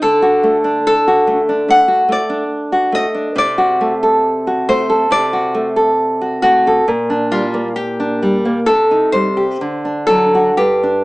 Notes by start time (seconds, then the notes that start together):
0.02 D3 A4
0.22 F#4
0.43 A3
0.64 D4
0.87 A4
1.08 F#4
1.27 A3
1.49 D4
1.68 A3 F#5
1.88 F#4
2.09 A3 D5
2.30 D4
2.72 F#4
2.92 A3 D#5
3.15 D4
3.36 C3 D5
3.58 F#4
3.81 A3
4.03 A4
4.47 F#4
4.69 A3 C5
4.90 A4
5.11 C3 D5
5.33 F#4
5.55 A3
5.76 A4
6.21 F#4
6.42 A3 F#4
6.67 A4
6.88 A#2
7.10 D4
7.31 G3 F4
7.54 A#3
7.76 G4
8.00 D4
8.22 G3
8.45 A#3
8.66 C3 A4
8.91 D#4
9.12 G3 C5
9.37 G4
9.61 D3
9.85 D4
10.07 F#3 A4
10.35 F#4
10.57 G2 G4
10.83 D4